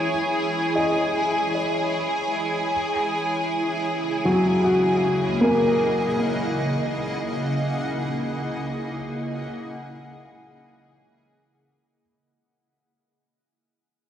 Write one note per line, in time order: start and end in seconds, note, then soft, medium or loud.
0.00 12.00 E4 medium
0.00 12.00 G#4 medium
0.00 4.15 C#5 medium
0.00 2.72 G#5 medium
0.00 12.01 G#5 medium
0.75 4.37 D#5 medium
2.71 12.00 C#3 medium
2.98 12.00 A#3 medium
3.93 11.99 D#5 medium
4.25 5.57 F#3 medium
4.43 11.99 F#5 medium
4.64 8.20 F#4 medium
5.41 8.96 A#3 medium